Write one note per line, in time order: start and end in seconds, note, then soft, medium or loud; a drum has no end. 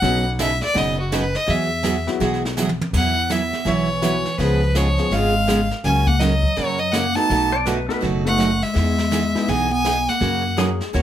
0.00 0.60 B1 loud
0.00 0.24 B2 medium
0.00 0.24 C#3 medium
0.00 0.23 F#3 medium
0.00 0.24 F#3 medium
0.00 0.23 B3 medium
0.00 0.24 B3 medium
0.00 0.23 C#4 medium
0.00 0.23 D#4 medium
0.00 0.24 D#4 medium
0.00 0.23 F#4 medium
0.00 0.25 B4 medium
0.00 0.26 F#5 medium
0.00 brush sweep soft
0.00 snare soft
0.39 0.50 B2 medium
0.39 0.51 C#3 medium
0.39 0.50 F#3 medium
0.39 0.51 B3 medium
0.39 0.51 D#4 medium
0.39 0.51 B4 medium
0.39 0.62 E5 medium
0.39 snare medium
0.39 hi-hat pedal medium
0.62 0.79 D5 loud
0.62 snare soft
0.74 1.33 F#1 medium
0.74 0.96 B2 medium
0.74 0.96 C#3 medium
0.74 0.96 F#3 medium
0.74 0.96 B3 medium
0.74 0.96 D#4 medium
0.74 0.97 B4 medium
0.74 0.99 D#5 medium
0.74 brush sweep medium
0.74 snare medium
1.00 1.16 F#4 medium
1.12 1.23 B2 medium
1.12 1.23 C#3 medium
1.12 1.23 F#3 medium
1.12 1.23 B3 medium
1.12 1.23 D#4 medium
1.12 1.24 B4 medium
1.12 1.38 B4 medium
1.12 snare medium
1.12 hi-hat pedal medium
1.35 1.52 D#5 medium
1.35 snare soft
1.46 2.06 E2 loud
1.46 1.68 E3 medium
1.46 1.69 F#3 medium
1.46 1.69 B3 medium
1.46 1.69 F#4 medium
1.46 1.69 G#4 medium
1.46 2.08 E5 medium
1.46 brush sweep soft
1.46 snare soft
1.83 1.95 E3 medium
1.83 1.95 F#3 medium
1.83 1.95 B3 medium
1.83 1.95 F#4 medium
1.83 1.96 G#4 medium
1.83 snare medium
1.83 hi-hat pedal medium
2.07 2.54 F#3 medium
2.07 2.54 G#3 medium
2.07 2.54 B3 medium
2.07 2.54 E4 medium
2.07 2.54 F#4 medium
2.07 snare soft
2.20 2.78 B1 medium
2.20 2.42 E3 medium
2.20 2.42 F#3 medium
2.20 2.42 B3 medium
2.20 2.42 F#4 medium
2.20 2.42 G#4 medium
2.20 brush sweep medium
2.20 snare medium
2.34 snare soft
2.45 snare soft
2.57 2.68 E3 medium
2.57 2.69 F#3 medium
2.57 2.69 B3 medium
2.57 2.69 F#4 medium
2.57 2.69 G#4 medium
2.57 snare medium
2.57 hi-hat pedal medium
2.69 high tom medium
2.81 high tom loud
2.93 3.52 E2 loud
2.93 3.15 E3 medium
2.93 3.15 F#3 medium
2.93 3.15 B3 medium
2.93 3.32 B3 medium
2.93 3.15 E4 medium
2.93 3.15 B4 medium
2.93 3.33 F#5 medium
2.93 brush sweep soft
2.93 kick medium
2.93 snare soft
2.93 crash medium
3.29 3.41 E3 medium
3.29 3.41 F#3 medium
3.29 3.41 B3 medium
3.29 3.69 B3 medium
3.29 3.41 E4 medium
3.29 3.41 B4 medium
3.29 3.69 E5 medium
3.29 snare medium
3.29 hi-hat pedal medium
3.53 snare soft
3.65 4.24 B1 medium
3.65 3.87 E3 medium
3.65 4.40 E3 medium
3.65 3.87 F#3 medium
3.65 3.87 B3 medium
3.65 3.87 E4 medium
3.65 3.87 B4 medium
3.65 4.39 C#5 medium
3.65 brush sweep soft
3.65 snare soft
4.02 4.23 E3 medium
4.02 4.14 E3 medium
4.02 4.14 F#3 medium
4.02 4.23 F#3 medium
4.02 4.23 B3 medium
4.02 4.14 B3 medium
4.02 4.23 E4 medium
4.02 4.14 E4 medium
4.02 4.23 F#4 medium
4.02 4.14 B4 medium
4.02 snare medium
4.02 hi-hat pedal medium
4.26 snare soft
4.38 4.97 C#2 medium
4.38 4.60 C#3 medium
4.38 4.77 F3 medium
4.38 4.59 G#3 medium
4.38 4.60 G#3 medium
4.38 4.59 B3 medium
4.38 4.60 B3 medium
4.38 4.59 C#4 medium
4.38 4.60 F4 medium
4.38 4.61 F4 medium
4.38 4.59 G#4 medium
4.38 4.61 G#4 medium
4.38 4.78 B4 medium
4.38 brush sweep medium
4.38 snare soft
4.75 4.87 C#3 medium
4.75 5.12 F3 medium
4.75 4.87 G#3 medium
4.75 4.87 B3 medium
4.75 4.87 F4 medium
4.75 4.87 G#4 medium
4.75 5.14 C#5 medium
4.75 snare medium
4.75 hi-hat pedal medium
4.98 5.10 G#3 medium
4.98 5.10 B3 medium
4.98 5.10 C#4 medium
4.98 5.10 F4 medium
4.98 5.11 G#4 medium
4.98 snare soft
5.11 5.69 G#1 medium
5.11 5.33 C#3 medium
5.11 5.70 G#3 medium
5.11 5.33 G#3 medium
5.11 5.33 B3 medium
5.11 5.33 F4 medium
5.11 5.33 G#4 medium
5.11 5.71 F5 loud
5.11 brush sweep soft
5.11 snare soft
5.47 5.59 C#3 medium
5.47 5.59 G#3 medium
5.47 5.59 B3 medium
5.47 5.60 F4 medium
5.47 5.59 G#4 medium
5.47 snare medium
5.47 hi-hat pedal medium
5.71 snare soft
5.84 6.42 C#2 medium
5.84 6.05 C#3 medium
5.84 6.06 F#3 medium
5.84 6.06 A#3 medium
5.84 6.08 C#4 medium
5.84 6.06 C#4 medium
5.84 6.06 F#4 medium
5.84 6.09 G#5 loud
5.84 brush sweep soft
5.84 snare soft
6.06 6.20 A#3 medium
6.06 6.22 F#5 loud
6.06 kick medium
6.19 6.32 C#3 medium
6.19 6.56 F#3 medium
6.19 6.32 F#3 medium
6.19 6.32 A#3 medium
6.19 6.32 C#4 medium
6.19 6.32 F#4 medium
6.19 6.58 D#5 medium
6.19 snare medium
6.19 hi-hat pedal medium
6.43 kick medium
6.56 7.15 F#2 medium
6.56 6.78 C#3 medium
6.56 6.79 F#3 medium
6.56 6.78 F#3 medium
6.56 6.78 A#3 medium
6.56 6.79 C#4 medium
6.56 6.79 F#4 medium
6.56 6.81 C#5 loud
6.56 brush sweep medium
6.56 snare soft
6.79 6.94 F#3 medium
6.79 6.94 D#5 medium
6.92 7.05 C#3 medium
6.92 7.05 F#3 medium
6.92 7.17 A#3 medium
6.92 7.05 A#3 medium
6.92 7.05 C#4 medium
6.92 7.05 F#4 medium
6.92 7.17 F#5 loud
6.92 snare medium
6.92 hi-hat pedal medium
7.15 7.28 A3 medium
7.15 7.28 B3 medium
7.15 7.52 D#4 medium
7.15 7.28 D#4 medium
7.15 7.28 F#4 medium
7.15 7.28 A4 medium
7.15 7.52 A5 loud
7.15 snare soft
7.30 7.88 B1 loud
7.30 7.51 B2 medium
7.30 7.52 F#3 medium
7.30 7.52 A3 medium
7.30 7.52 D#4 medium
7.30 7.52 F#4 medium
7.30 brush sweep soft
7.30 snare soft
7.52 7.66 D5 loud
7.66 7.77 B2 medium
7.66 7.78 F#3 medium
7.66 7.78 A3 medium
7.66 7.78 D#4 medium
7.66 7.78 F#4 medium
7.66 7.88 B4 medium
7.66 snare medium
7.66 hi-hat pedal medium
7.88 8.01 A3 medium
7.88 8.01 B3 medium
7.88 8.01 D#4 medium
7.88 8.01 F#4 medium
7.88 8.01 A4 medium
7.88 8.02 B4 medium
7.88 snare soft
8.01 8.61 F#1 medium
8.01 8.23 B2 medium
8.01 8.23 F#3 medium
8.01 8.24 A3 medium
8.01 8.24 D#4 medium
8.01 8.24 F#4 medium
8.01 brush sweep soft
8.01 snare soft
8.25 8.37 A3 medium
8.25 8.64 A3 medium
8.25 8.37 B3 medium
8.25 8.37 D#4 medium
8.25 8.37 F#4 medium
8.25 8.37 A4 medium
8.25 8.65 F#5 medium
8.37 8.49 B2 medium
8.37 8.50 F#3 medium
8.37 8.50 A3 medium
8.37 8.50 D#4 medium
8.37 8.50 F#4 medium
8.37 snare medium
8.37 hi-hat pedal medium
8.62 9.50 G#3 medium
8.62 9.51 E5 medium
8.62 snare soft
8.73 9.34 E2 loud
8.73 8.96 E3 medium
8.73 8.96 B3 medium
8.73 8.96 D#4 medium
8.73 8.96 G#4 medium
8.73 brush sweep soft
8.73 snare soft
8.98 snare medium
9.11 9.23 E3 medium
9.11 9.23 B3 medium
9.11 9.23 D#4 medium
9.11 9.23 G#4 medium
9.11 snare medium
9.11 hi-hat pedal medium
9.35 9.47 G#3 medium
9.35 9.47 B3 medium
9.35 9.47 D#4 medium
9.35 9.47 E4 medium
9.35 9.47 G#4 medium
9.35 snare soft
9.47 10.07 B1 medium
9.47 9.69 E3 medium
9.47 9.70 B3 medium
9.47 9.69 B3 medium
9.47 9.70 D#4 medium
9.47 9.70 G#4 medium
9.47 9.72 G#5 loud
9.47 brush sweep medium
9.47 snare soft
9.70 10.10 B3 medium
9.70 10.10 G#5 loud
9.84 9.96 E3 medium
9.84 9.96 B3 medium
9.84 9.96 D#4 medium
9.84 9.96 G#4 medium
9.84 snare medium
9.84 hi-hat pedal medium
10.08 10.58 A#3 medium
10.08 10.58 F#5 medium
10.08 snare soft
10.20 10.79 F#2 loud
10.20 10.42 C#3 medium
10.20 10.42 F#3 medium
10.20 10.42 A#3 medium
10.20 10.42 C#4 medium
10.20 10.43 F#4 medium
10.20 brush sweep medium
10.20 snare soft
10.57 10.69 C#3 medium
10.57 10.69 F#3 medium
10.57 10.78 F#3 medium
10.57 10.78 A#3 medium
10.57 10.69 A#3 medium
10.57 10.78 C#4 medium
10.57 10.69 C#4 medium
10.57 10.69 F#4 medium
10.57 10.78 F#4 medium
10.57 10.93 G#4 medium
10.57 10.79 A#4 medium
10.57 snare medium
10.57 hi-hat pedal medium
10.81 snare soft
10.93 11.02 D#2 medium
10.93 11.02 C#3 medium
10.93 11.02 F#3 medium
10.93 11.02 A#3 medium
10.93 11.02 C#4 medium
10.93 11.02 F#4 medium
10.93 11.02 C#5 medium
10.93 brush sweep medium
10.93 snare soft